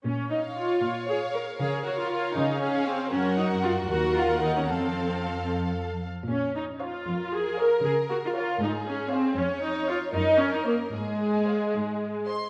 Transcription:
<<
  \new Staff \with { instrumentName = "Violin section" } { \time 6/8 \key bes \minor \tempo 4. = 77 r8 <des'' f''>4. <des'' f''>4 | <des'' f''>8 <des'' f''>4. <des'' f''>4 | <bes' ges''>4. <bes' ges''>4. | <a' f''>2~ <a' f''>8 r8 |
r4 <des'' f''>8 r4 <des'' f''>8 | r4 <des'' f''>8 r4 <des'' f''>8 | \key des \major r4 <des'' f''>8 r4 <des'' ees''>8 | r4 <des'' f''>8 r4 <c'' ees''>8 | }
  \new Staff \with { instrumentName = "Violin section" } { \time 6/8 \key bes \minor r4. des''4. | bes'4. aes'4. | ges'4. bes'4. | a'2~ a'16 r8. |
r4. bes'4.~ | bes'4. aes'4. | \key des \major des''4. bes'4. | aes'2~ aes'16 r16 c'''8 | }
  \new Staff \with { instrumentName = "Viola section" } { \time 6/8 \key bes \minor des'8 ees'8 f'4 aes'8 bes'8 | aes'8 ges'16 f'16 f'8 ees'8 des'8 c'8 | des'8 ees'8 f'8 ges'8 f'8 ees'16 des'16 | c'4. r4. |
des'8 ees'8 f'4 aes'8 bes'8 | aes'8 ges'16 f'16 f'8 ees'8 des'8 c'8 | \key des \major des'8 ees'8 f'8 ees'8 des'16 ees'16 bes8 | aes2~ aes8 r8 | }
  \new Staff \with { instrumentName = "Cello section" } { \clef bass \time 6/8 \key bes \minor bes,4. bes,4. | des4. des4. | ges,4. ees,4. | f,2~ f,8 r8 |
bes,4. f,4. | des4. aes,4. | \key des \major f,4. ges,4. | aes,4. aes,4. | }
>>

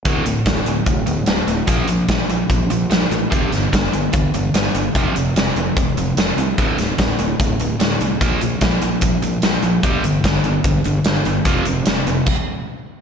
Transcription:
<<
  \new Staff \with { instrumentName = "Overdriven electric guitar" } { \clef bass \time 4/4 \key d \minor \tempo 4 = 147 <d, a, d>8 <d, a,>8 <d, a,>8 <d, a,>8 <d, a,>8 <d, a,>8 <d, a,>8 <d, a,>8 | <bes, f bes>8 <bes, f>8 <bes, f>8 <bes, f>8 <bes, f>8 <bes, f>8 <bes, f>8 <bes, f>8 | <g, d g>8 <g, d>8 <g, d>8 <g, d>8 <g, d>8 <g, d>8 <g, d>8 <g, d>8 | <f, c f>8 <f, c>8 <f, c>8 <f, c>8 <f, c>8 <f, c>8 <f, c>8 <f, c>8 |
<d, a, d>8 <d, a,>8 <d, a,>8 <d, a,>8 <d, a,>8 <d, a,>8 <d, a,>8 <d, a,>8 | <bes, f bes>8 <bes, f>8 <bes, f>8 <bes, f>8 <bes, f>8 <bes, f>8 <bes, f>8 <bes, f>8 | <g, d g>8 <g, d>8 <g, d>8 <g, d>8 <g, d>8 <g, d>8 <g, d>8 <g, d>8 | <f, c f>8 <f, c>8 <f, c>8 <f, c>8 r2 | }
  \new Staff \with { instrumentName = "Fingered electric bass" } { \clef bass \time 4/4 \key d \minor d,,8 d,,8 d,,8 d,,8 d,,8 d,,8 d,,8 d,,8 | bes,,8 bes,,8 bes,,8 bes,,8 bes,,8 bes,,8 bes,,8 a,,8 | g,,8 g,,8 g,,8 g,,8 g,,8 g,,8 g,,8 g,,8 | f,,8 f,,8 f,,8 f,,8 f,,8 f,,8 f,,8 c,8 |
d,,8 d,,8 d,,8 d,,8 d,,8 d,,8 d,,8 c,8 | bes,,8 bes,,8 bes,,8 bes,,8 bes,,8 bes,,8 bes,,8 bes,,8 | g,,8 g,,8 g,,8 g,,8 g,,8 g,,8 g,,8 g,,8 | f,,8 f,,8 f,,8 f,,8 r2 | }
  \new DrumStaff \with { instrumentName = "Drums" } \drummode { \time 4/4 <hh bd>8 hh8 <hh bd sn>8 hh8 <hh bd>8 hh8 <hh sn>8 hh8 | <hh bd>8 hh8 <hh bd sn>8 hh8 <hh bd>8 hh8 <hh sn>8 hh8 | <hh bd>8 <hh sn>8 <hh bd sn>8 hh8 <hh bd>8 hh8 <hh sn>8 hh8 | <hh bd>8 hh8 <hh sn>8 hh8 <hh bd>8 hh8 <hh sn>8 hh8 |
<hh bd>8 <hh sn>8 <hh bd sn>8 hh8 <hh bd>8 hh8 <hh sn>8 hh8 | <hh bd>8 hh8 <hh bd sn>8 hh8 <hh bd>8 hh8 <hh sn>8 hh8 | <hh bd>8 hh8 <hh bd sn>8 hh8 <hh bd>8 hh8 <hh sn>8 hh8 | <hh bd>8 hh8 <hh sn>8 hh8 <cymc bd>4 r4 | }
>>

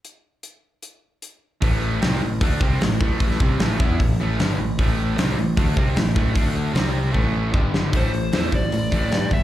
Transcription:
<<
  \new Staff \with { instrumentName = "Lead electric guitar" } { \time 4/4 \key a \minor \tempo 4 = 152 r1 | r1 | r1 | r1 |
r1 | c''4. d''2 e''8 | }
  \new Staff \with { instrumentName = "Distorted electric guitar" } { \clef bass \time 4/4 \key a \minor r1 | <a, e a>4 <c g c'>8 <a, e>8 <d a d'>8 <c g c'>8 <a, e>8 <a, e a>8~ | <a, e a>8 <c g c'>8 <a, e a>8 <e b e'>8 <a, e>8 <a, e a>8 <g, d g>8 <a, e>8 | <a, e a>4 <c g c'>8 <a, e>8 <d a d'>8 <c g c'>8 <a, e>8 <a, e a>8 |
<d a d'>4 <c g c'>4 <a, e a>4 <g, d g>4 | <a, e a>8 <a, e>8 <a, e a>8 <a, e>8 <a, e>8 <a, e a>8 <a, e>8 <a, e>8 | }
  \new Staff \with { instrumentName = "Picked electric bass" } { \clef bass \time 4/4 \key a \minor r1 | a,,4 c,8 a,,8 d,8 c,8 a,,8 a,,8~ | a,,8 c,8 a,,8 e,8 a,,8 a,,8 g,,8 a,,8 | a,,4 c,8 a,,8 d,8 c,8 a,,8 a,,8 |
d,4 c,4 a,,4 g,,4 | a,,8 a,,8 e,8 a,,8 a,,8 a,,8 g,8 g,,8 | }
  \new DrumStaff \with { instrumentName = "Drums" } \drummode { \time 4/4 hh4 hh4 hh4 hh4 | <hho bd>4 <hho sn>4 <hho bd>8 bd8 <hho sn>8 bd8 | <hho bd>16 sn16 bd8 <hho sn>8 bd8 <hho bd>4 <hho sn>4 | <hho bd>4 <hho sn>4 <hho bd>8 bd8 <hho sn>8 bd8 |
<hho bd>4 <hho sn>4 bd4 bd8 sn8 | <hho bd>8 hho8 <hho sn>8 <hho bd>8 hho8 <hho bd>8 <hho sn>8 <hho bd>8 | }
>>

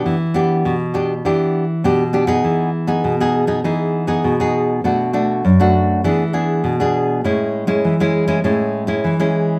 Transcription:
\new Staff \with { instrumentName = "Nylon-string guitar" } { \time 4/4 \key e \minor \tempo 4 = 100 << { <b d' g'>16 r16 <b d' g'>8. r16 <b d' g'>16 r16 <b d' g'>8. r16 <b d' g'>16 r16 <b d' g'>16 <b dis' gis'>16~ | \key e \major <b dis' gis'>8 r16 <b dis' gis'>8 <b dis' gis'>8 <b dis' gis'>16 <b dis' gis'>8. <b dis' gis'>8 <b dis' gis'>8. | <a d' fis'>8 <a d' fis'>8 r16 <a d' fis'>8. <b d' gis'>16 r16 <b d' gis'>8. <b d' gis'>8. | <gis cis' e'>8. <gis cis' e'>8 <gis cis' e'>8 <gis cis' e'>16 <gis cis' e'>8. <gis cis' e'>8 <gis cis' e'>8. | } \\ { e4 b,4 e4 b,4 | e4 b,4 e4 b,4 | b,4 fis,4 e4 b,4 | a,4 e4 a,4 e4 | } >> }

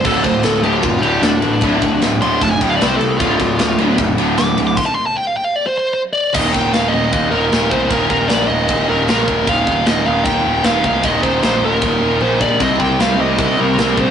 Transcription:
<<
  \new Staff \with { instrumentName = "Lead electric guitar" } { \time 4/4 \key ees \lydian \tempo 4 = 153 a'8 c''8 a'8 g'8 f'8 g'8 d'4~ | d'4 r8 c'''8 a''16 gis''16 g''16 f''16 d''16 c''16 a'8 | f'2 r4 d'''8 r16 d'''16 | c'''16 a''16 c'''16 a''16 g''16 f''16 g''16 f''16 d''16 c''16 c''8 c''8 d''8 |
ees''8 g''8 f''8 ees''4 bes'4 c''8 | bes'8 bes'8 d''8 ees''4 bes'8 bes'4 | f''4 ees''8 f''8 g''4 f''8 f''8 | ees''8 c''8 c''8 bes'4. c''8 d''8 |
ees''8 g''8 f''8 ees''4 bes'4 c''8 | }
  \new Staff \with { instrumentName = "Distorted electric guitar" } { \clef bass \time 4/4 \key ees \lydian <d, a, d>1 | <d, a, d>2. <c g c'>4 | <d, a, d>1 | r1 |
r1 | r1 | r1 | r1 |
<c g c'>8 <c g c'>8 <c g c'>8 <c g c'>8 <c g c'>8 <c g c'>8 <c g c'>8 <c g c'>8 | }
  \new Staff \with { instrumentName = "Distorted electric guitar" } { \clef bass \time 4/4 \key ees \lydian <d, a, d>8 <d, a,>8 <d, a,>8 <d, a, d>8 <d, a,>8 <d, a, d>8 <d, a,>8 <d, a,>8 | <d, a, d>8 <d, a,>8 <d, a,>8 <d, a, d>8 <d, a,>8 <d, a, d>8 <c g c'>8 <c g>8 | <d, a, d>8 <d, a,>8 <d, a,>8 <d, a, d>8 <d, a,>8 <d, a, d>8 <d, a,>8 <d, a,>8 | r1 |
<ees, bes, ees>2~ <ees, bes, ees>8 <ees, bes, ees>8 <ees, bes, ees>4 | <ees, bes, ees>2~ <ees, bes, ees>8 <ees, bes, ees>8 <ees, bes, ees>4 | <ees, bes, ees>2~ <ees, bes, ees>8 <ees, bes, ees>8 <ees, bes, ees>4 | <ees, bes, ees>2~ <ees, bes, ees>8 <ees, bes, ees>8 <ees, bes, ees>4 |
<c g c'>2~ <c g c'>8 <c g c'>8 <c g c'>4 | }
  \new Staff \with { instrumentName = "Distorted electric guitar" } { \clef bass \time 4/4 \key ees \lydian <d, a, d>8 <d, a,>8 <d, a,>8 <d, a, d>8 <d, a,>8 <d, a, d>8 <d, a,>8 <d, a,>8 | <d, a, d>8 <d, a,>8 <d, a,>8 <d, a, d>8 <d, a,>8 <d, a, d>8 <c g c'>8 <c g>8 | <d, a, d>8 <d, a,>8 <d, a,>8 <d, a, d>8 <d, a,>8 <d, a, d>8 <d, a,>8 <d, a,>8 | r1 |
<ees, bes, ees>4. <ees, bes, ees>4. <ees, bes, ees>4 | <ees, bes, ees>4. <ees, bes, ees>4. <ees, bes, ees>4 | <ees, bes, ees>4. <ees, bes, ees>4. <ees, bes, ees>4 | <ees, bes, ees>4. <ees, bes, ees>4. <ees, bes, ees>4 |
<c g c'>4. <c g c'>4. <c g c'>4 | }
  \new Staff \with { instrumentName = "Picked electric bass" } { \clef bass \time 4/4 \key ees \lydian d,,8 d,,8 d,,8 d,,8 f,,8 d,,8 d,,8 a,,8 | d,,8 d,,8 d,,8 d,,8 f,,8 d,,8 c,8 c,8 | d,,8 d,,8 d,,8 d,,8 f,,8 d,,8 d,,8 d,,8 | r1 |
ees,,8 ees,,8 ees,,8 ees,,8 ees,8 ees,,8 ees,,8 c,8 | ees,,8 ees,,8 bes,,8 ees,,8 ees,,8 ees,,8 bes,,8 ees,,8 | ees,,8 ees,,8 ees,,8 ees,,8 ees,8 ees,,8 ees,,8 c,8 | ees,,8 ees,,8 bes,,8 ees,,8 ees,,8 ees,,8 bes,,8 bes,,8 |
c,8 c,8 c,8 c,8 c,8 c,8 c,8 bes,,8 | }
  \new DrumStaff \with { instrumentName = "Drums" } \drummode { \time 4/4 <cymc bd>8 <bd cymr>8 <cymr sn>16 sn16 cymr8 <bd cymr>8 cymr8 <cymr sn>8 cymr8 | <bd cymr>8 <bd cymr>8 <cymr sn>8 cymr8 <bd cymr>8 <bd cymr>8 <cymr sn>8 cymr8 | <bd cymr>8 <bd cymr>8 <cymr sn>8 cymr8 <bd cymr>8 cymr8 <cymr sn>8 cymr8 | <cymc bd>4 r4 r4 r4 |
<cymc bd>8 bd8 <cymc sn>4 <cymc bd>4 <cymc sn>8 bd8 | <cymc bd>8 bd8 <cymc sn>4 <cymc bd>4 <cymc sn>8 bd8 | <cymc bd>8 bd8 <cymc sn>4 <cymc bd>4 <cymc sn>8 bd8 | <cymc bd>8 bd8 <cymc sn>4 <cymc bd>4 tommh8 bd8 |
<cymc bd>8 bd8 <cymc sn>4 <cymc bd>4 <cymc sn>8 bd8 | }
>>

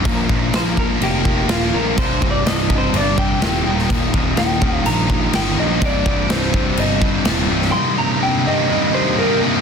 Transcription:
<<
  \new Staff \with { instrumentName = "Clean electric guitar" } { \time 4/4 \key c \minor \tempo 4 = 125 r4 c''8 bes'8 g'4 f'8 bes'8 | \tuplet 3/2 { c''4 d''8 ees''4 c''8 } d''8 g''4. | r4 g''4 bes''4 g''8 ees''8 | d''4 c''4 ees''8 r4. |
c'''8 bes''8 g''8 ees''4 c''8 bes'8 r8 | }
  \new Staff \with { instrumentName = "Distorted electric guitar" } { \clef bass \time 4/4 \key c \minor <bes, f bes ees' f' bes'>4 <bes, f bes ees' f' bes'>8 <bes ees' f' bes'>4. <bes ees' f' bes'>8 <bes ees' f' bes'>8 | <c, g, c g d'>4 <c, g, c g d'>8 <c g d'>4. <g, c g d'>8 <ees, bes, ees g bes ees'>8 | <ees, bes, ees g bes ees'>4 <ees, bes, ees g bes ees'>8 <ees g bes ees'>4. <ees g bes ees'>8 <ees g bes ees'>8 | <c, g, c g d'>4 <c, g, c g d'>8 <c g d'>4. <g, c g d'>8 <c g d'>8 |
<c, g, c g bes ees'>4 <c, g, c g bes ees'>8 <c g bes ees'>4. <c g bes ees'>8 <c g bes ees'>8 | }
  \new Staff \with { instrumentName = "Distorted electric guitar" } { \clef bass \time 4/4 \key c \minor <bes, f bes ees' f' bes'>8 <bes ees' f' bes'>8 <bes ees' f' bes'>8 <bes, f bes ees' f' bes'>8 <bes ees' f' bes'>8 <bes ees' f' bes'>8 <bes, f bes ees' f' bes'>8 <bes ees' f' bes'>8 | <c, g, c g d'>8 <c g d'>8 <g, c g d'>8 <c, g, c g d'>8 <g, c g d'>8 <c g d'>8 <c, g, c g d'>8 <ees, bes, ees g bes ees'>8 | <ees, bes, ees g bes ees'>8 <ees g bes ees'>8 <ees g bes ees'>8 <ees, bes, ees g bes ees'>8 <ees g bes ees'>8 <ees g bes ees'>8 <ees, bes, ees g bes ees'>8 <ees g bes ees'>8 | <c, g, c g d'>8 <c g d'>8 <g, c g d'>8 <c, g, c g d'>8 <g, c g d'>8 <c g d'>8 <c, g, c g d'>8 <c g d'>8 |
<c, g, c g bes ees'>8 <c g bes ees'>8 <c g bes ees'>8 <c, g, c g bes ees'>8 <c g bes ees'>8 <c g bes ees'>8 <c, g, c g bes ees'>8 <c g bes ees'>8 | }
  \new Staff \with { instrumentName = "Overdriven electric guitar" } { \clef bass \time 4/4 \key c \minor <bes, f bes>8 <bes, f bes>8 <bes, f bes>8 <bes, f bes>8 <bes, f bes>8 <bes, f bes>8 <bes, f bes>8 <bes, f bes>8 | <c, g, c>8 <c, g, c>8 <c, g, c>8 <c, g, c>8 <c, g, c>8 <c, g, c>8 <c, g, c>8 <ees, bes, ees>8 | <ees, bes, ees>8 <ees, bes, ees>8 <ees, bes, ees>8 <ees, bes, ees>8 <ees, bes, ees>8 <ees, bes, ees>8 <ees, bes, ees>8 <ees, bes, ees>8 | <c, g, c>8 <c, g, c>8 <c, g, c>8 <c, g, c>8 <c, g, c>8 <c, g, c>8 <c, g, c>8 <c, g, c>8 |
<c, g, c>8 <c, g, c>8 <c, g, c>8 <c, g, c>8 <c, g, c>8 <c, g, c>8 <c, g, c>8 <c, g, c>8 | }
  \new Staff \with { instrumentName = "Picked electric bass" } { \clef bass \time 4/4 \key c \minor bes,,8 bes,,8 bes,,4 f,,4 ees,,8 bes,,8 | c,,8 c,,8 c,,4 g,,4 ees,,8 ees,,8 | ees,,8 ees,,8 ees,,4 bes,,4 g,,8 bes,,8 | c,,8 c,,8 c,,4 g,,4 ees,,8 c,,8 |
r1 | }
  \new DrumStaff \with { instrumentName = "Drums" } \drummode { \time 4/4 <cymc bd>8 bd8 <cymc sn>8 bd8 cymc8 bd8 <cymc sn>4 | <cymc bd>8 bd8 <cymc sn>8 bd8 cymc8 bd8 <cymc sn>8. sn16 | <cymc bd>8 bd8 <cymc sn>8 bd8 cymc8 bd8 <cymc sn>4 | <cymc bd>8 bd8 <cymc sn>8 bd8 cymc8 bd8 <cymc sn>8. sn16 |
r4 r4 r4 r4 | }
>>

